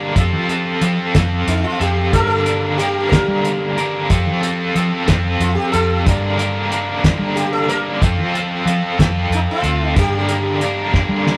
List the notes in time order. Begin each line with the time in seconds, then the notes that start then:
Already playing: G2 D3 G3 A#3 D4 A#4
0.15 F2 F3 C4 F4 A4, kick, closed hi-hat
0.32 F3
0.49 C4 F4 A4, closed hi-hat
0.81 F3 C4 F4 A4, closed hi-hat
1.14 F2 F3 C4 F4 A4, kick, snare, closed hi-hat
1.47 F2 D#4, closed hi-hat
1.64 F4
1.80 F2 C4 F4 G4 A4, closed hi-hat
2.12 G2 D3 G3 A#3 D4 A4 A#4, kick, closed hi-hat
2.19 A#4
2.27 A4
2.45 G3 A#3 D4 A#4, closed hi-hat
2.78 G3 A#3 D4 G4 A#4, closed hi-hat
3.09 A#3 D4 A#4, kick, snare, closed hi-hat
3.13 G2 D3 G3
3.28 G3
3.45 closed hi-hat
3.77 G3 A#3 D4 A#4, closed hi-hat
4.09 F2 F3 C4 F4 A4, kick, closed hi-hat
4.26 F3
4.41 C4 F4 A4, closed hi-hat
4.74 F3 C4 F4 A4, closed hi-hat
5.06 F2 C4 F4 A4, kick, snare, closed hi-hat
5.10 F3
5.40 F2 F4, closed hi-hat
5.55 G4
5.72 F2 F4 A4, closed hi-hat
5.76 C4
6.05 G2 D3 G3 A#3 D4 A#4, kick, closed hi-hat
6.38 G3 A#3 D4 A#4, closed hi-hat
6.70 G3 A#3 D4 A#4, closed hi-hat
7.03 G2 D3 G3 A#3 D4 A#4, kick, snare, closed hi-hat
7.19 G3
7.35 G4, closed hi-hat
7.53 A4
7.68 G3 A#3 D4 A#4, closed hi-hat
8.01 F2 F3 C4 F4 A4, kick, closed hi-hat
8.18 F3
8.33 C4 F4 A4, closed hi-hat
8.65 F3 C4 F4 A4, closed hi-hat
8.98 F2 F3 C4 F4 A4, kick, snare, closed hi-hat
9.30 F2, closed hi-hat
9.34 D#4
9.51 F4
9.62 D2 C4 F4 A4, closed hi-hat
9.95 G2 D3 G3 A#3 D4 G4 A#4, kick, closed hi-hat
10.28 G3 A#3 D4 A#4, closed hi-hat
10.61 G3 A#3 D4 A#4, closed hi-hat
10.94 G2 D3 G3 A#3 D4 A#4, kick, snare
11.09 G3
11.27 snare